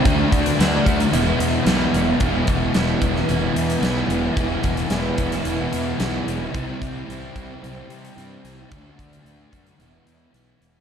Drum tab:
HH |x-xxx-xxx-x-x-x-|x-x-x-x-x-xxx-x-|x-xxx-xxx-x-x-x-|x-x-x-x-x-xxx-x-|
SD |----o-------o---|----o--o----o---|----o--o----o---|----------------|
BD |o-o---o---------|o-o---o---------|o-o---o---------|o-o---o---------|

HH |x-xxx-xxx-x-x-x-|
SD |----------------|
BD |o-o---o---------|